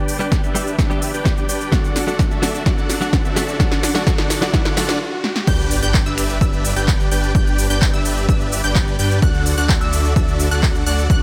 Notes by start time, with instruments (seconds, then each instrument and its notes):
Already playing: supersaw synth D4 G4 B4 D5 G5, riser
0.08 open hi-hat, shaker
0.19 clean electric guitar G3 B3 D4 G4, supersaw synth D4 G4 B4 D5 G5, shaker
0.32 kick, snare, shaker
0.43 supersaw synth D4 G4 B4 D5 E5, shaker
0.55 clean electric guitar G3 B3 D4 G4, open hi-hat, shaker
0.67 shaker
0.79 supersaw synth D4 G4 B4 D5 E5, kick, snare, shaker
0.90 clean electric guitar G3 B3 D4 G4, shaker
1.02 open hi-hat, shaker
1.14 supersaw synth D4 G4 B4 D5 G5, shaker
1.25 clean electric guitar G3 B3 D4 G4, kick, snare, shaker
1.37 shaker
1.49 supersaw synth D4 G4 B4 D5 G5, open hi-hat, shaker
1.61 shaker
1.72 clean electric guitar F#3 A3 D4 F#4, supersaw synth D4 F#4 A4 D5 F#5, kick, snare, shaker
1.84 shaker
1.96 snare, open hi-hat, shaker
2.07 clean electric guitar F#3 A3 D4 F#4, supersaw synth D4 F#4 A4 D5 F#5, shaker
2.19 kick, snare, shaker
2.31 supersaw synth D4 F#4 A4 D5 E5, shaker
2.42 clean electric guitar F#3 A3 D4 F#4, snare, open hi-hat, shaker
2.55 shaker
2.65 clean electric guitar F#3 A3 D4 F#4, supersaw synth D4 F#4 A4 D5 F#5, kick, snare, shaker
2.78 shaker
2.90 snare, open hi-hat, shaker
3.01 clean electric guitar F#3 A3 D4 F#4, supersaw synth D4 F#4 A4 D5 F#5, shaker
3.13 kick, snare, shaker
3.25 supersaw synth D4 F#4 A4 D5 E5, shaker
3.36 clean electric guitar F#3 A3 D4 F#4, snare, open hi-hat, shaker
3.48 shaker
3.59 clean electric guitar F#3 A3 D4 F#4, supersaw synth D4 F#4 A4 D5 F#5, kick, snare, shaker
3.72 snare, shaker
3.83 snare, open hi-hat, shaker
3.94 clean electric guitar F#3 A3 D4 F#4, supersaw synth D4 F#4 A4 D5 F#5, snare, shaker
4.06 clean electric guitar F#3 A3 D4 F#4, supersaw synth D4 F#4 A4 D5 F#5, kick, snare, shaker
4.18 snare, shaker
4.30 snare, open hi-hat, shaker
4.41 clean electric guitar F#3 A3 D4 F#4, supersaw synth D4 F#4 A4 D5 F#5, snare, shaker
4.53 clean electric guitar F#3 A3 D4 F#4, supersaw synth D4 F#4 A4 D5 F#5, kick, snare, shaker
4.65 snare, shaker
4.76 clean electric guitar F#3 A3 D4 F#4, supersaw synth D4 F#4 A4 D5 F#5, snare, open hi-hat, shaker
4.89 snare, shaker
5.24 snare
5.36 snare
5.47 detuned saw bass G1, supersaw synth D4 G4 B4 D5 G5, synth pluck G6, kick, crash, sub drop, shaker
5.59 shaker
5.71 open hi-hat, shaker
5.83 detuned saw bass G1, supersaw synth D4 G4 B4 D5 G5, synth pluck G6, shaker
5.94 kick, clap, shaker
6.06 detuned saw bass G1, supersaw synth D4 G4 B4 D5 E5, synth pluck E6, shaker
6.18 finger snap, open hi-hat, shaker
6.30 shaker
6.41 detuned saw bass G1, supersaw synth D4 G4 B4 D5 E5, synth pluck E6, kick, shaker
6.53 shaker
6.65 open hi-hat, shaker
6.76 detuned saw bass G1, supersaw synth D4 G4 B4 D5 G5, synth pluck G6, shaker
6.88 kick, clap, shaker
7.00 shaker
7.11 detuned saw bass G1, supersaw synth D4 G4 B4 D5 G5, synth pluck G6, open hi-hat, shaker
7.23 shaker
7.35 detuned saw bass G1, supersaw synth D4 G4 B4 D5 G5, synth pluck G6, kick, shaker
7.47 shaker
7.58 open hi-hat, shaker
7.70 detuned saw bass G1, supersaw synth D4 G4 B4 D5 G5, synth pluck G6, shaker
7.82 kick, clap, shaker
7.94 detuned saw bass G1, supersaw synth D4 G4 B4 D5 E5, synth pluck E6, shaker
8.05 open hi-hat, shaker
8.17 shaker
8.29 detuned saw bass G1, supersaw synth D4 G4 B4 D5 E5, synth pluck E6, kick, shaker
8.41 shaker
8.52 open hi-hat, shaker
8.64 detuned saw bass G1, supersaw synth D4 G4 B4 D5 G5, synth pluck G6, shaker
8.76 kick, clap, shaker
8.88 shaker
8.99 detuned saw bass G2, supersaw synth D4 G4 B4 D5 G5, synth pluck G6, open hi-hat, shaker
9.11 shaker
9.22 detuned saw bass D2, supersaw synth D4 F#4 A4 D5 F#5, synth pluck F#6, kick, shaker
9.34 shaker
9.46 open hi-hat, shaker
9.58 detuned saw bass D2, supersaw synth D4 F#4 A4 D5 F#5, synth pluck F#6, shaker
9.69 kick, clap, shaker
9.81 detuned saw bass D2, supersaw synth D4 F#4 A4 D5 E5, synth pluck E6, shaker
9.93 open hi-hat, shaker
10.05 shaker
10.16 detuned saw bass D2, supersaw synth D4 F#4 A4 D5 E5, synth pluck E6, kick, shaker
10.28 shaker
10.40 open hi-hat, shaker
10.51 detuned saw bass D2, supersaw synth D4 F#4 A4 D5 F#5, synth pluck F#6, shaker
10.63 kick, clap, shaker
10.75 shaker
10.86 detuned saw bass D2, supersaw synth D4 F#4 A4 D5 F#5, synth pluck F#6, open hi-hat, shaker
10.98 shaker
11.10 detuned saw bass D2, supersaw synth D4 F#4 A4 D5 F#5, synth pluck F#6, kick, shaker